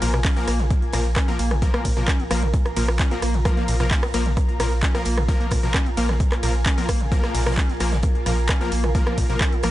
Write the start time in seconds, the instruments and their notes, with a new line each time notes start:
Already playing: ambient pad F4 A#4 G#5
0.02 sub bass A#1, acid bass A#2, supersaw synth F3 A#3 A#4, closed hi-hat, open hi-hat, ride
0.14 sub bass A#1, acid bass B2, cross-stick, closed hi-hat
0.24 acid bass C#4, kick, snare, clap, closed hi-hat, open hi-hat
0.37 sub bass A#1, supersaw synth F3 A#3 A#4, acid bass A#3, closed hi-hat
0.47 sub bass A#1, acid bass A#3, cross-stick, snare, closed hi-hat, open hi-hat, ride
0.59 sub bass A#1, acid bass A#2, snare, closed hi-hat
0.70 acid bass A#2, kick, closed hi-hat
0.82 sub bass A#1, closed hi-hat
0.93 sub bass A#1, acid bass A#2, supersaw synth F3 A#3 A#4, cross-stick, snare, closed hi-hat, open hi-hat, ride
1.05 sub bass A#1, closed hi-hat
1.14 acid bass C#4, ambient pad A#5, kick, cross-stick, snare, clap, closed hi-hat
1.28 sub bass A#1, supersaw synth F3 A#3 A#4, acid bass A#3, snare, closed hi-hat
1.39 sub bass A#1, acid bass A#3, closed hi-hat, open hi-hat, ride
1.51 sub bass A#1, acid bass A#2, cross-stick
1.62 acid bass A#1, supersaw synth F3 A#3 A#4, kick, closed hi-hat
1.74 sub bass A#1, acid bass A#3, cross-stick, closed hi-hat
1.85 sub bass A#1, acid bass A#2, kick, closed hi-hat, open hi-hat, ride
1.97 sub bass A#1, acid bass B2, supersaw synth F3 A#3 A#4, closed hi-hat
2.07 acid bass C#4, kick, cross-stick, snare, clap, closed hi-hat
2.20 sub bass A#1, acid bass A#3, closed hi-hat
2.31 sub bass A#1, supersaw synth F3 A#3 A#4, acid bass A#3, cross-stick, closed hi-hat, open hi-hat, ride
2.43 sub bass A#1, acid bass A#2, closed hi-hat
2.54 acid bass A#2, kick, closed hi-hat
2.65 sub bass A#1, cross-stick, closed hi-hat
2.76 sub bass A#1, acid bass A#2, supersaw synth F3 A#3 A#4, closed hi-hat, open hi-hat, ride
2.88 sub bass A#1, cross-stick
2.99 acid bass C#4, kick, snare, clap, closed hi-hat
3.11 sub bass A#1, supersaw synth F3 A#3 A#4, acid bass A#3, snare, closed hi-hat
3.22 sub bass A#1, acid bass A#3, cross-stick, closed hi-hat, open hi-hat, ride
3.34 sub bass A#1, acid bass A#2, closed hi-hat
3.45 acid bass A#1, supersaw synth F3 A#3 A#4, kick, cross-stick, closed hi-hat
3.57 sub bass A#1, acid bass A#3, snare, closed hi-hat
3.68 sub bass A#1, acid bass A#2, closed hi-hat, open hi-hat, ride
3.80 sub bass A#1, acid bass B2, supersaw synth F3 A#3 A#4, cross-stick, closed hi-hat
3.91 acid bass C#4, kick, snare, clap, closed hi-hat, open hi-hat
4.03 sub bass A#1, acid bass A#3, cross-stick, closed hi-hat
4.14 sub bass A#1, supersaw synth F3 A#3 A#4, acid bass A#3, snare, closed hi-hat, open hi-hat, ride
4.26 sub bass A#1, acid bass A#2, snare, closed hi-hat
4.37 acid bass A#2, kick, cross-stick, closed hi-hat
4.49 sub bass A#1, closed hi-hat
4.60 sub bass A#1, acid bass A#2, supersaw synth F3 A#3 A#4, cross-stick, snare, closed hi-hat, open hi-hat, ride
4.72 sub bass A#1, closed hi-hat
4.80 acid bass C#4, ambient pad G#5, kick, snare, clap, closed hi-hat
4.95 sub bass A#1, supersaw synth F3 A#3 A#4, acid bass A#3, cross-stick, snare, closed hi-hat
5.05 sub bass A#1, acid bass A#3, closed hi-hat, open hi-hat, ride
5.17 sub bass A#1, acid bass A#2, cross-stick, closed hi-hat
5.28 acid bass A#1, supersaw synth F3 A#3 A#4, kick, closed hi-hat
5.40 sub bass A#1, acid bass A#3, closed hi-hat
5.51 sub bass A#1, acid bass A#2, kick, cross-stick, closed hi-hat, open hi-hat, ride
5.63 sub bass A#1, acid bass B2, supersaw synth F3 A#3 A#4, closed hi-hat
5.74 acid bass C#4, kick, cross-stick, snare, clap, closed hi-hat
5.86 sub bass A#1, acid bass A#3, closed hi-hat
5.97 sub bass A#1, supersaw synth F3 A#3 A#4, acid bass A#3, closed hi-hat, open hi-hat, ride
6.09 sub bass A#1, acid bass A#2, cross-stick, snare, closed hi-hat
6.20 acid bass A#2, kick, closed hi-hat
6.32 sub bass A#1, cross-stick, clap, closed hi-hat
6.43 sub bass A#1, acid bass A#2, supersaw synth F3 A#3 A#4, closed hi-hat, open hi-hat, ride
6.55 sub bass A#1, closed hi-hat
6.66 acid bass C#4, kick, cross-stick, snare, clap, closed hi-hat
6.78 sub bass A#1, supersaw synth F3 A#3 A#4, acid bass A#3, snare, open hi-hat
6.89 sub bass A#1, acid bass A#3, kick, cross-stick, closed hi-hat, open hi-hat, ride
7.00 sub bass A#1, acid bass A#2, closed hi-hat
7.12 acid bass A#1, supersaw synth F3 A#3 A#4, kick, closed hi-hat
7.23 sub bass A#1, acid bass A#3, cross-stick, snare, closed hi-hat
7.34 sub bass A#1, acid bass A#2, snare, closed hi-hat, open hi-hat, ride
7.40 snare, closed hi-hat
7.46 sub bass A#1, acid bass B2, supersaw synth F3 A#3 A#4, cross-stick, snare, closed hi-hat
7.52 snare, closed hi-hat
7.57 acid bass C#4, kick, snare, clap, closed hi-hat
7.69 sub bass A#1, acid bass A#3, snare, closed hi-hat
7.80 sub bass A#1, supersaw synth F3 A#3 A#4, acid bass A#3, cross-stick, closed hi-hat, open hi-hat, ride
7.92 sub bass A#1, acid bass A#2, snare, closed hi-hat
8.03 acid bass A#2, kick, closed hi-hat
8.15 sub bass A#1, closed hi-hat
8.26 sub bass A#1, acid bass A#2, supersaw synth F3 A#3 A#4, cross-stick, snare, closed hi-hat, open hi-hat, ride
8.38 sub bass A#1, closed hi-hat
8.47 acid bass C#4, ambient pad A#5, kick, cross-stick, snare, clap, closed hi-hat
8.61 sub bass A#1, supersaw synth F3 A#3 A#4, acid bass A#3, snare, closed hi-hat
8.72 sub bass A#1, acid bass A#3, closed hi-hat, open hi-hat, ride
8.84 sub bass A#1, acid bass A#2, cross-stick, closed hi-hat
8.95 acid bass A#1, supersaw synth F3 A#3 A#4, kick, closed hi-hat
9.07 sub bass A#1, acid bass A#3, cross-stick, closed hi-hat
9.18 sub bass A#1, acid bass A#2, kick, closed hi-hat, open hi-hat, ride
9.30 sub bass A#1, acid bass B2, supersaw synth F3 A#3 A#4, closed hi-hat
9.41 acid bass C#4, kick, cross-stick, snare, clap, closed hi-hat
9.52 sub bass A#1, acid bass A#3, closed hi-hat
9.63 sub bass A#1, supersaw synth F3 A#3 A#4, acid bass A#3, cross-stick, closed hi-hat, open hi-hat, ride